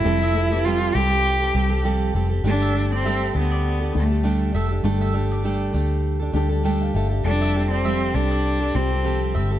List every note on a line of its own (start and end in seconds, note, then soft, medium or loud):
0.00 0.21 F3 medium
0.00 0.04 G3 medium
0.00 0.05 C4 medium
0.00 0.66 E4 loud
0.00 0.06 F4 medium
0.00 0.36 A4 medium
0.04 0.91 F1 loud
0.04 0.29 G3 medium
0.04 0.21 G3 medium
0.04 0.21 C4 medium
0.04 0.29 C4 medium
0.04 0.30 F4 medium
0.04 0.21 G4 medium
0.04 0.30 G4 medium
0.04 0.20 A4 medium
0.21 0.52 C4 soft
0.21 0.51 G4 medium
0.21 0.49 A4 medium
0.21 0.34 E5 medium
0.34 0.48 G3 medium
0.34 0.48 C4 medium
0.34 0.48 F4 medium
0.34 0.49 A4 medium
0.51 1.46 G3 medium
0.51 1.46 C4 medium
0.51 0.65 C4 soft
0.51 1.46 F4 medium
0.51 0.65 G4 soft
0.51 0.65 A4 medium
0.51 1.47 B4 medium
0.51 0.93 D5 medium
0.65 0.95 F3 medium
0.65 0.93 G3 loud
0.65 0.94 C4 medium
0.65 0.96 F4 loud
0.65 0.95 G4 loud
0.65 0.96 A4 medium
0.94 1.51 C2 medium
0.94 1.11 G3 medium
0.94 1.11 C4 medium
0.94 1.85 G4 loud
0.94 1.10 G4 medium
0.94 1.08 A4 medium
1.09 1.42 C4 soft
1.09 1.41 G4 medium
1.09 1.39 A4 medium
1.40 1.53 C4 soft
1.40 1.54 G4 soft
1.40 1.54 A4 medium
1.53 2.11 C2 medium
1.53 1.71 G3 medium
1.53 1.71 C4 medium
1.53 1.70 G4 medium
1.53 1.68 A4 medium
1.70 1.83 C4 soft
1.70 1.84 G4 medium
1.70 1.84 A4 medium
1.83 2.14 F3 medium
1.83 2.12 G3 medium
1.83 2.14 C4 medium
1.83 2.14 G4 loud
1.83 2.15 A4 loud
2.13 2.42 F1 medium
2.13 2.31 G3 medium
2.13 2.31 C4 medium
2.13 2.30 G4 medium
2.13 2.28 A4 medium
2.29 2.44 C4 soft
2.29 2.44 G4 medium
2.29 2.44 A4 medium
2.44 3.30 G1 loud
2.44 2.74 G3 medium
2.44 3.40 G3 medium
2.44 2.73 A3 medium
2.44 2.74 D4 medium
2.44 3.41 D4 medium
2.44 2.89 D4 loud
2.44 2.75 G4 medium
2.44 2.75 A4 medium
2.44 3.41 A4 medium
2.62 2.74 E5 medium
2.74 3.03 A3 medium
2.74 3.04 D4 medium
2.74 3.04 G4 medium
2.74 3.05 A4 medium
2.92 3.33 C4 loud
2.92 3.04 D5 medium
3.04 3.34 G3 medium
3.04 3.33 A3 medium
3.04 3.34 D4 medium
3.04 3.34 G4 medium
3.04 3.35 A4 medium
3.04 3.21 E5 medium
3.34 3.91 D2 medium
3.34 3.81 A3 medium
3.34 3.81 D4 medium
3.34 3.81 G4 medium
3.34 3.79 A4 medium
3.38 3.93 B3 loud
3.52 3.92 D5 medium
3.80 3.93 D4 soft
3.80 3.94 G4 soft
3.80 3.94 A4 medium
3.93 4.51 D2 medium
3.93 4.66 G3 medium
3.93 4.10 A3 medium
3.93 4.67 D4 medium
3.93 4.11 D4 medium
3.93 4.10 G4 medium
3.93 4.67 A4 medium
3.93 4.08 A4 medium
3.98 4.52 A3 medium
4.10 4.23 D4 soft
4.10 4.24 G4 soft
4.10 4.24 A4 soft
4.23 4.54 G3 medium
4.23 4.51 A3 medium
4.23 4.52 D4 medium
4.23 4.53 G4 medium
4.23 4.55 A4 medium
4.52 4.82 F1 medium
4.52 4.70 A3 medium
4.52 4.71 D4 medium
4.52 4.70 G4 medium
4.52 4.68 A4 medium
4.52 4.70 E5 medium
4.69 4.83 D4 soft
4.69 4.84 G4 soft
4.69 4.84 A4 medium
4.83 5.70 G1 loud
4.83 5.14 G3 medium
4.83 5.80 G3 medium
4.83 5.11 A3 medium
4.83 5.13 D4 medium
4.83 5.80 D4 medium
4.83 5.14 G4 medium
4.83 5.14 A4 loud
4.83 5.81 A4 medium
5.01 5.14 E5 medium
5.12 5.43 A3 medium
5.12 5.44 D4 medium
5.12 5.44 G4 medium
5.12 5.44 A4 medium
5.31 5.72 D5 medium
5.44 5.74 G3 medium
5.44 5.71 A3 medium
5.44 5.73 D4 medium
5.44 5.73 G4 medium
5.44 5.75 A4 loud
5.73 6.30 D2 medium
5.73 6.20 A3 medium
5.73 6.21 D4 medium
5.73 6.20 G4 medium
5.73 6.18 A4 medium
6.20 6.32 D4 soft
6.20 6.33 G4 medium
6.20 6.34 A4 medium
6.32 6.90 D2 medium
6.32 7.07 G3 medium
6.32 6.50 A3 medium
6.32 6.51 D4 medium
6.32 7.07 D4 medium
6.32 6.50 G4 medium
6.32 6.48 A4 medium
6.32 7.07 A4 medium
6.32 6.63 A5 medium
6.49 6.63 D4 soft
6.49 6.64 G4 medium
6.49 6.64 A4 medium
6.63 6.94 G3 medium
6.63 6.92 A3 medium
6.63 6.93 D4 medium
6.63 6.94 G4 medium
6.63 6.95 A4 loud
6.63 6.80 G5 medium
6.81 6.94 F5 medium
6.93 7.22 G1 medium
6.93 7.11 A3 medium
6.93 7.11 D4 medium
6.93 7.10 G4 medium
6.93 7.08 A4 medium
6.93 7.23 E5 medium
7.10 7.25 D4 soft
7.10 7.25 G4 soft
7.10 7.24 A4 medium
7.24 8.11 F1 loud
7.24 7.54 F3 medium
7.24 7.53 G3 medium
7.24 8.20 G3 medium
7.24 7.54 C4 medium
7.24 7.68 D4 loud
7.24 8.20 F4 medium
7.24 7.55 G4 medium
7.24 7.55 A4 medium
7.24 8.21 A4 medium
7.41 7.54 E5 medium
7.54 7.84 G3 medium
7.54 7.84 C4 medium
7.54 7.85 G4 medium
7.54 7.85 A4 medium
7.71 8.16 C4 loud
7.71 7.84 D5 medium
7.84 8.14 F3 medium
7.84 8.12 G3 medium
7.84 8.14 C4 medium
7.84 8.15 G4 medium
7.84 8.16 A4 medium
7.84 8.00 E5 medium
8.14 8.70 C2 medium
8.14 8.61 G3 medium
8.14 8.61 C4 medium
8.14 8.76 D4 loud
8.14 8.60 G4 medium
8.14 8.59 A4 medium
8.31 8.72 D5 medium
8.60 8.74 C4 soft
8.60 8.75 G4 soft
8.60 8.74 A4 medium
8.74 9.37 C2 medium
8.74 9.46 G3 medium
8.74 8.91 G3 medium
8.74 9.35 C4 medium
8.74 8.91 C4 medium
8.74 9.47 F4 medium
8.74 9.47 G4 medium
8.74 8.91 G4 medium
8.74 8.89 A4 medium
8.91 9.03 C4 soft
8.91 9.04 G4 soft
8.91 9.04 A4 medium
9.04 9.34 F3 medium
9.04 9.34 G3 medium
9.04 9.35 C4 medium
9.04 9.35 G4 medium
9.04 9.35 A4 medium
9.35 9.59 G1 medium
9.35 9.51 G3 medium
9.35 9.52 C4 medium
9.35 9.52 G4 medium
9.35 9.50 A4 medium
9.35 9.50 E5 medium
9.51 9.59 C4 soft
9.51 9.59 G4 medium
9.51 9.59 A4 medium